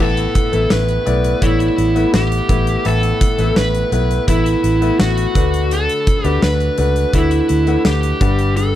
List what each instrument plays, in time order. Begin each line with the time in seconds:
0.00 fingered electric bass A1, grand piano A2 A3 B3 E4 B4, lead electric guitar A4
0.17 closed hi-hat
0.35 kick, closed hi-hat
0.52 fingered electric bass A1, grand piano A3 B3 E4 B4, closed hi-hat
0.70 fingered electric bass A1, lead electric guitar B4, snare
0.88 closed hi-hat
1.06 fingered electric bass B1, grand piano A3 B3 E4 D5, closed hi-hat
1.24 closed hi-hat
1.41 fingered electric bass A1, grand piano A3 B3 E4 C#5, lead electric guitar E4, kick, closed hi-hat
1.60 closed hi-hat
1.78 fingered electric bass A1, closed hi-hat
1.95 grand piano A3 B3 E4 B4, closed hi-hat
2.13 fingered electric bass A1, lead electric guitar G4, snare
2.32 closed hi-hat
2.48 fingered electric bass A1, grand piano A3 B3 E4 B4, kick, closed hi-hat
2.67 closed hi-hat
2.85 fingered electric bass A1, grand piano A2 A3 B3 E4 B4, lead electric guitar A4, closed hi-hat
3.03 closed hi-hat
3.21 kick, closed hi-hat
3.38 fingered electric bass A1, grand piano A3 B3 E4 B4, closed hi-hat
3.56 fingered electric bass A1, lead electric guitar B4, snare
3.75 closed hi-hat
3.92 fingered electric bass B1, grand piano A3 B3 E4 B4, closed hi-hat
4.11 closed hi-hat
4.27 fingered electric bass A1, grand piano A3 B3 E4 B4, lead electric guitar E4, kick, closed hi-hat
4.46 closed hi-hat
4.64 fingered electric bass A1, closed hi-hat
4.81 grand piano A3 B3 E4 B4, closed hi-hat
4.99 fingered electric bass A1, lead electric guitar F#4, snare
5.18 closed hi-hat
5.35 fingered electric bass D2, grand piano D3 A3 D4 F#4 B4, kick, closed hi-hat
5.54 closed hi-hat
5.71 lead electric guitar A4, closed hi-hat
5.89 closed hi-hat
6.07 kick, closed hi-hat
6.24 fingered electric bass D2, grand piano A3 D4 F#4 B4, lead electric guitar G4, closed hi-hat
6.42 fingered electric bass D2, lead electric guitar B4, snare
6.60 closed hi-hat
6.78 fingered electric bass C#2, grand piano A3 D4 F#4 B4, closed hi-hat
6.96 closed hi-hat
7.13 fingered electric bass D2, grand piano A3 D4 F#4 B4, lead electric guitar E4, kick, closed hi-hat
7.31 closed hi-hat
7.49 fingered electric bass D2, closed hi-hat
7.67 grand piano A3 D4 B4 F#5, closed hi-hat
7.85 fingered electric bass D2, lead electric guitar G4, snare
8.03 closed hi-hat
8.21 fingered electric bass G1, grand piano G2 G3 D4 B4 F#5, kick, closed hi-hat
8.39 closed hi-hat
8.57 lead electric guitar A4, closed hi-hat